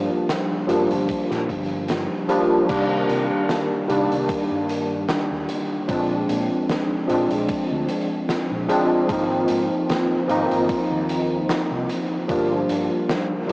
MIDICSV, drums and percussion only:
0, 0, Header, 1, 2, 480
1, 0, Start_track
1, 0, Key_signature, -3, "minor"
1, 0, Tempo, 800000
1, 1616, Time_signature, 4, 2, 24, 8
1, 8113, End_track
2, 0, Start_track
2, 0, Title_t, "Drums"
2, 177, Note_on_c, 9, 38, 116
2, 179, Note_on_c, 9, 42, 92
2, 237, Note_off_c, 9, 38, 0
2, 239, Note_off_c, 9, 42, 0
2, 416, Note_on_c, 9, 42, 77
2, 476, Note_off_c, 9, 42, 0
2, 546, Note_on_c, 9, 42, 55
2, 606, Note_off_c, 9, 42, 0
2, 655, Note_on_c, 9, 36, 115
2, 655, Note_on_c, 9, 42, 79
2, 715, Note_off_c, 9, 36, 0
2, 715, Note_off_c, 9, 42, 0
2, 785, Note_on_c, 9, 38, 36
2, 845, Note_off_c, 9, 38, 0
2, 895, Note_on_c, 9, 36, 57
2, 897, Note_on_c, 9, 42, 85
2, 955, Note_off_c, 9, 36, 0
2, 957, Note_off_c, 9, 42, 0
2, 1129, Note_on_c, 9, 42, 89
2, 1139, Note_on_c, 9, 38, 103
2, 1189, Note_off_c, 9, 42, 0
2, 1199, Note_off_c, 9, 38, 0
2, 1374, Note_on_c, 9, 42, 76
2, 1434, Note_off_c, 9, 42, 0
2, 1614, Note_on_c, 9, 42, 84
2, 1615, Note_on_c, 9, 36, 126
2, 1617, Note_on_c, 9, 49, 106
2, 1674, Note_off_c, 9, 42, 0
2, 1675, Note_off_c, 9, 36, 0
2, 1677, Note_off_c, 9, 49, 0
2, 1856, Note_on_c, 9, 42, 75
2, 1916, Note_off_c, 9, 42, 0
2, 2094, Note_on_c, 9, 38, 120
2, 2096, Note_on_c, 9, 42, 90
2, 2154, Note_off_c, 9, 38, 0
2, 2156, Note_off_c, 9, 42, 0
2, 2337, Note_on_c, 9, 42, 80
2, 2397, Note_off_c, 9, 42, 0
2, 2470, Note_on_c, 9, 42, 61
2, 2530, Note_off_c, 9, 42, 0
2, 2574, Note_on_c, 9, 42, 90
2, 2575, Note_on_c, 9, 36, 120
2, 2634, Note_off_c, 9, 42, 0
2, 2635, Note_off_c, 9, 36, 0
2, 2816, Note_on_c, 9, 42, 72
2, 2876, Note_off_c, 9, 42, 0
2, 3053, Note_on_c, 9, 38, 110
2, 3054, Note_on_c, 9, 42, 81
2, 3113, Note_off_c, 9, 38, 0
2, 3114, Note_off_c, 9, 42, 0
2, 3293, Note_on_c, 9, 42, 72
2, 3353, Note_off_c, 9, 42, 0
2, 3534, Note_on_c, 9, 42, 90
2, 3535, Note_on_c, 9, 36, 124
2, 3594, Note_off_c, 9, 42, 0
2, 3595, Note_off_c, 9, 36, 0
2, 3776, Note_on_c, 9, 42, 72
2, 3836, Note_off_c, 9, 42, 0
2, 4016, Note_on_c, 9, 42, 85
2, 4017, Note_on_c, 9, 38, 124
2, 4076, Note_off_c, 9, 42, 0
2, 4077, Note_off_c, 9, 38, 0
2, 4256, Note_on_c, 9, 42, 77
2, 4316, Note_off_c, 9, 42, 0
2, 4383, Note_on_c, 9, 42, 54
2, 4443, Note_off_c, 9, 42, 0
2, 4491, Note_on_c, 9, 42, 84
2, 4495, Note_on_c, 9, 36, 126
2, 4551, Note_off_c, 9, 42, 0
2, 4555, Note_off_c, 9, 36, 0
2, 4732, Note_on_c, 9, 42, 78
2, 4792, Note_off_c, 9, 42, 0
2, 4974, Note_on_c, 9, 38, 113
2, 4977, Note_on_c, 9, 42, 91
2, 5034, Note_off_c, 9, 38, 0
2, 5037, Note_off_c, 9, 42, 0
2, 5215, Note_on_c, 9, 42, 80
2, 5275, Note_off_c, 9, 42, 0
2, 5455, Note_on_c, 9, 36, 127
2, 5457, Note_on_c, 9, 42, 91
2, 5515, Note_off_c, 9, 36, 0
2, 5517, Note_off_c, 9, 42, 0
2, 5687, Note_on_c, 9, 42, 86
2, 5747, Note_off_c, 9, 42, 0
2, 5937, Note_on_c, 9, 42, 94
2, 5940, Note_on_c, 9, 38, 121
2, 5997, Note_off_c, 9, 42, 0
2, 6000, Note_off_c, 9, 38, 0
2, 6176, Note_on_c, 9, 42, 77
2, 6236, Note_off_c, 9, 42, 0
2, 6306, Note_on_c, 9, 42, 50
2, 6366, Note_off_c, 9, 42, 0
2, 6414, Note_on_c, 9, 36, 127
2, 6414, Note_on_c, 9, 42, 86
2, 6474, Note_off_c, 9, 36, 0
2, 6474, Note_off_c, 9, 42, 0
2, 6654, Note_on_c, 9, 42, 74
2, 6714, Note_off_c, 9, 42, 0
2, 6895, Note_on_c, 9, 42, 84
2, 6896, Note_on_c, 9, 38, 114
2, 6955, Note_off_c, 9, 42, 0
2, 6956, Note_off_c, 9, 38, 0
2, 7135, Note_on_c, 9, 42, 84
2, 7195, Note_off_c, 9, 42, 0
2, 7375, Note_on_c, 9, 36, 125
2, 7376, Note_on_c, 9, 42, 78
2, 7435, Note_off_c, 9, 36, 0
2, 7436, Note_off_c, 9, 42, 0
2, 7615, Note_on_c, 9, 42, 80
2, 7675, Note_off_c, 9, 42, 0
2, 7856, Note_on_c, 9, 38, 123
2, 7856, Note_on_c, 9, 42, 91
2, 7916, Note_off_c, 9, 38, 0
2, 7916, Note_off_c, 9, 42, 0
2, 8113, End_track
0, 0, End_of_file